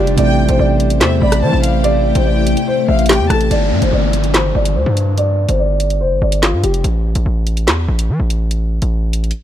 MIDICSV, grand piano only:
0, 0, Header, 1, 2, 480
1, 0, Start_track
1, 0, Key_signature, 0, "minor"
1, 0, Tempo, 416667
1, 202, Time_signature, 4, 2, 24, 8
1, 10866, End_track
2, 0, Start_track
2, 0, Title_t, "Grand piano"
2, 0, Program_c, 0, 0
2, 0, Note_on_c, 0, 67, 79
2, 181, Note_off_c, 0, 67, 0
2, 202, Note_on_c, 0, 74, 101
2, 540, Note_off_c, 0, 74, 0
2, 563, Note_on_c, 0, 72, 88
2, 672, Note_off_c, 0, 72, 0
2, 683, Note_on_c, 0, 74, 95
2, 1133, Note_off_c, 0, 74, 0
2, 1161, Note_on_c, 0, 72, 82
2, 1381, Note_off_c, 0, 72, 0
2, 1406, Note_on_c, 0, 74, 88
2, 1624, Note_off_c, 0, 74, 0
2, 1638, Note_on_c, 0, 72, 84
2, 2091, Note_off_c, 0, 72, 0
2, 2117, Note_on_c, 0, 74, 108
2, 2458, Note_off_c, 0, 74, 0
2, 2482, Note_on_c, 0, 72, 73
2, 2592, Note_off_c, 0, 72, 0
2, 2603, Note_on_c, 0, 74, 83
2, 3054, Note_off_c, 0, 74, 0
2, 3083, Note_on_c, 0, 72, 89
2, 3302, Note_off_c, 0, 72, 0
2, 3325, Note_on_c, 0, 76, 83
2, 3543, Note_off_c, 0, 76, 0
2, 3562, Note_on_c, 0, 67, 95
2, 3781, Note_off_c, 0, 67, 0
2, 3803, Note_on_c, 0, 69, 85
2, 4022, Note_off_c, 0, 69, 0
2, 4045, Note_on_c, 0, 74, 101
2, 4382, Note_off_c, 0, 74, 0
2, 4403, Note_on_c, 0, 72, 80
2, 4512, Note_off_c, 0, 72, 0
2, 4524, Note_on_c, 0, 74, 91
2, 4974, Note_off_c, 0, 74, 0
2, 5004, Note_on_c, 0, 72, 79
2, 5223, Note_off_c, 0, 72, 0
2, 5243, Note_on_c, 0, 74, 89
2, 5462, Note_off_c, 0, 74, 0
2, 5480, Note_on_c, 0, 72, 80
2, 5932, Note_off_c, 0, 72, 0
2, 5964, Note_on_c, 0, 74, 108
2, 6301, Note_off_c, 0, 74, 0
2, 6321, Note_on_c, 0, 72, 73
2, 6431, Note_off_c, 0, 72, 0
2, 6439, Note_on_c, 0, 74, 83
2, 6892, Note_off_c, 0, 74, 0
2, 6920, Note_on_c, 0, 72, 90
2, 7140, Note_off_c, 0, 72, 0
2, 7168, Note_on_c, 0, 74, 73
2, 7385, Note_off_c, 0, 74, 0
2, 7402, Note_on_c, 0, 65, 83
2, 7621, Note_off_c, 0, 65, 0
2, 7641, Note_on_c, 0, 67, 77
2, 7861, Note_off_c, 0, 67, 0
2, 10866, End_track
0, 0, End_of_file